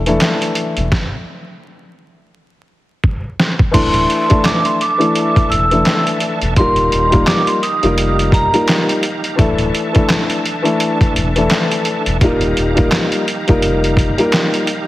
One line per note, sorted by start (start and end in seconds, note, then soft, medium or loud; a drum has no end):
0.00 0.17 E1 medium
0.06 0.86 E3 medium
0.06 0.86 A3 medium
0.06 0.86 D4 medium
0.06 0.87 E4 medium
0.06 0.87 A4 loud
0.06 closed hi-hat medium
0.20 snare loud
0.20 clap medium
0.20 closed hi-hat medium
0.42 closed hi-hat medium
0.55 closed hi-hat medium
0.77 0.90 E1 loud
0.77 closed hi-hat soft
0.92 kick loud
0.92 snare medium
3.04 kick medium
3.40 snare medium
3.59 kick medium
3.71 4.05 D1 loud
3.71 4.24 E3 medium
3.71 4.24 A3 medium
3.71 4.24 D4 medium
3.71 6.54 D4 medium
3.71 4.24 E4 medium
3.71 4.25 A4 loud
3.71 6.54 A4 medium
3.71 6.54 E5 medium
3.71 6.54 A5 medium
3.71 4.41 C6 loud
3.71 kick loud
3.71 closed hi-hat loud
3.71 crash loud
3.94 closed hi-hat medium
4.10 closed hi-hat medium
4.28 4.76 E3 medium
4.28 4.76 A3 medium
4.28 4.76 D4 medium
4.28 4.77 E4 medium
4.28 4.77 A4 loud
4.28 kick loud
4.28 closed hi-hat medium
4.45 4.63 D6 medium
4.45 snare loud
4.45 clap loud
4.45 closed hi-hat medium
4.65 4.79 C6 medium
4.65 closed hi-hat medium
4.81 5.47 D6 medium
4.81 closed hi-hat medium
4.98 5.63 E3 medium
4.98 5.63 A3 medium
4.98 5.64 D4 medium
4.98 5.64 E4 medium
4.98 5.64 A4 loud
4.98 closed hi-hat medium
5.15 closed hi-hat loud
5.36 kick loud
5.36 closed hi-hat medium
5.50 5.82 E1 loud
5.50 6.03 E6 medium
5.50 closed hi-hat medium
5.71 6.51 E3 medium
5.71 6.51 A3 medium
5.71 6.51 D4 medium
5.71 6.51 E4 medium
5.71 6.52 A4 loud
5.71 closed hi-hat medium
5.85 snare loud
5.85 clap loud
5.85 closed hi-hat medium
6.07 closed hi-hat medium
6.20 closed hi-hat medium
6.42 6.55 E1 loud
6.42 closed hi-hat soft
6.56 6.88 D#1 loud
6.56 7.08 G3 medium
6.56 7.08 A#3 medium
6.56 9.36 D#4 medium
6.56 7.09 D#4 medium
6.56 7.09 F4 medium
6.56 9.36 G4 medium
6.56 7.09 A#4 loud
6.56 9.36 F5 medium
6.56 9.36 A#5 medium
6.56 7.23 C6 loud
6.56 kick loud
6.56 closed hi-hat loud
6.76 closed hi-hat medium
6.92 7.23 D#1 loud
6.92 closed hi-hat medium
7.10 7.58 G3 loud
7.10 7.58 A#3 medium
7.10 7.58 D#4 medium
7.10 7.59 F4 medium
7.10 7.59 A#4 loud
7.10 kick medium
7.10 closed hi-hat medium
7.26 7.45 D6 medium
7.26 snare loud
7.26 clap loud
7.26 closed hi-hat loud
7.47 7.61 C6 medium
7.47 closed hi-hat medium
7.63 8.29 D#6 medium
7.63 closed hi-hat medium
7.83 8.46 F1 medium
7.83 8.47 G3 loud
7.83 8.47 A#3 medium
7.83 8.47 D#4 medium
7.83 8.48 F4 medium
7.83 8.48 A#4 loud
7.83 closed hi-hat medium
7.98 closed hi-hat loud
8.19 closed hi-hat medium
8.32 8.65 A#5 medium
8.32 kick loud
8.32 closed hi-hat medium
8.53 9.00 G3 medium
8.53 9.00 A#3 medium
8.53 9.00 D#4 medium
8.53 9.00 F4 medium
8.53 9.01 A#4 loud
8.53 closed hi-hat medium
8.68 snare loud
8.68 clap loud
8.68 closed hi-hat medium
8.89 closed hi-hat medium
9.03 closed hi-hat medium
9.24 closed hi-hat soft
9.36 9.70 D1 loud
9.36 9.88 E3 medium
9.36 9.88 A3 medium
9.36 12.17 D4 medium
9.36 9.89 D4 medium
9.36 9.89 E4 medium
9.36 12.17 A4 medium
9.36 9.89 A4 loud
9.36 12.17 E5 medium
9.36 12.17 A5 medium
9.36 kick loud
9.36 closed hi-hat loud
9.58 closed hi-hat medium
9.75 closed hi-hat medium
9.93 10.40 E3 medium
9.93 10.41 A3 medium
9.93 10.41 D4 medium
9.93 10.41 E4 medium
9.93 10.41 A4 loud
9.93 kick loud
9.93 closed hi-hat medium
10.09 snare loud
10.09 clap loud
10.09 closed hi-hat medium
10.30 closed hi-hat medium
10.45 closed hi-hat medium
10.62 11.28 E3 loud
10.62 11.28 A3 medium
10.62 11.28 D4 medium
10.62 11.29 E4 medium
10.62 11.29 A4 loud
10.62 closed hi-hat medium
10.80 closed hi-hat loud
11.01 kick loud
11.01 closed hi-hat medium
11.15 11.47 E1 loud
11.15 closed hi-hat medium
11.36 12.15 E3 medium
11.36 12.15 A3 medium
11.36 12.16 D4 medium
11.36 12.16 E4 medium
11.36 12.16 A4 loud
11.36 closed hi-hat medium
11.50 snare loud
11.50 clap medium
11.50 closed hi-hat medium
11.71 closed hi-hat medium
11.85 closed hi-hat medium
12.06 12.20 E1 loud
12.06 closed hi-hat soft
12.21 12.52 D#1 loud
12.21 12.73 G3 medium
12.21 12.73 A#3 medium
12.21 14.87 D#4 medium
12.21 12.73 D#4 medium
12.21 12.73 F4 medium
12.21 14.87 G4 medium
12.21 12.74 A#4 loud
12.21 14.87 F5 medium
12.21 14.87 A#5 medium
12.21 kick loud
12.21 closed hi-hat loud
12.41 closed hi-hat soft
12.57 12.88 D#1 loud
12.57 closed hi-hat medium
12.75 13.23 G3 loud
12.75 13.23 A#3 medium
12.75 13.23 D#4 medium
12.75 13.23 F4 medium
12.75 13.24 A#4 loud
12.75 kick medium
12.75 closed hi-hat medium
12.92 snare loud
12.92 clap loud
12.92 closed hi-hat loud
13.12 closed hi-hat medium
13.28 closed hi-hat medium
13.47 14.11 F1 medium
13.47 14.11 G3 medium
13.47 14.12 A#3 medium
13.47 14.12 D#4 medium
13.47 14.12 F4 medium
13.47 14.12 A#4 loud
13.47 kick loud
13.47 closed hi-hat medium
13.62 closed hi-hat loud
13.84 closed hi-hat medium
13.97 kick loud
13.97 closed hi-hat medium
14.17 14.64 G3 medium
14.17 14.65 A#3 medium
14.17 14.65 D#4 medium
14.17 14.65 F4 medium
14.17 14.66 A#4 loud
14.17 closed hi-hat medium
14.32 snare loud
14.32 clap loud
14.32 closed hi-hat medium
14.54 closed hi-hat medium
14.67 closed hi-hat medium